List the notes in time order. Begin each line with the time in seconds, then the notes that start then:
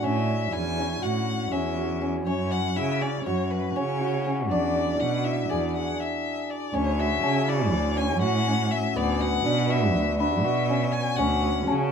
Already playing: F#4 G#4
0.02 A2 C#4 E5
0.52 E2 E4 G#5
0.78 C#4
1.02 A2 F#4 F#5
1.52 E2 C#4 E5
1.77 F#4
2.02 C#4
2.26 F#2 C#4 C#5
2.51 F#5
2.76 C#3 E4 E5
3.01 C#4 D5
3.26 F#2 F#4 C#5
3.51 B4
3.76 C#3 C#4 C#5
4.01 F#4
4.26 C#4
4.50 E2 D4 D5
5.00 B2 F#4 F#5
5.24 E4 E5
5.49 E2 G#4 D5
5.76 F#5
6.00 E5
6.50 D5
6.73 D2 C#4 C#5
6.98 F#4 E5
7.23 C#3 C#4 A5
7.48 E4 D5
7.72 D2
7.97 C#4 G#5
8.21 A2 F#4 F#5
8.47 C#4
8.71 E5
8.95 D2 B3 D5
9.21 F#4 F#5
9.45 B2 D4
9.70 F#4 E5
9.95 D2
10.19 D4 E5 B5
10.44 B2 F#4
10.69 C#4
10.92 G#5
11.16 D2 C#4 F#5
11.42 F#4
11.67 C#3 C#4 A5